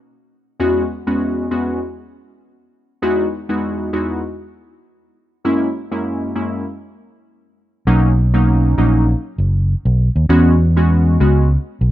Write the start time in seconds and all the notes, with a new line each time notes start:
0.60 E2 G#3 B3 C#4 F#4
1.07 E2 G#3 B3 C#4 F#4
1.51 E2 G#3 B3 C#4 F#4
3.02 E2 G#3 B3 D#4 E4 F#4
3.49 E2 G#3 B3 D#4 E4 F#4
3.93 E2 G#3 B3 D#4 E4 F#4
5.44 F#2 G#3 A#3 C#4 E4
5.91 F#2 G#3 A#3 C#4 E4
6.35 F#2 G#3 A#3 C#4 E4
7.87 B1 F#3 A#3 C#4 D#4
8.34 F#3 A#3 C#4 D#4
8.78 A#1 F#3 A#3 C#4 D#4
9.38 F#1
9.85 B1
10.16 D#2
10.29 E2 G#3 B3 C#4 F#4
10.76 G#3 B3 C#4 F#4
11.20 C#2 G#3 B3 C#4 F#4
11.81 B1